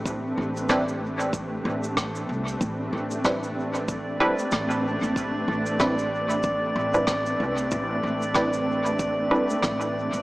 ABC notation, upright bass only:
X:1
M:4/4
L:1/16
Q:"Swing 16ths" 1/4=94
K:Am
V:1 name="Upright bass" clef=bass
A,,,2 A,,,8 A,,,4 C,,2 | A,,,2 A,,,8 z2 A,,,3 A,,,- | A,,,2 A,,,8 A,,,4 C,,2 | A,,,2 A,,,8 z2 A,,,3 A,,, |]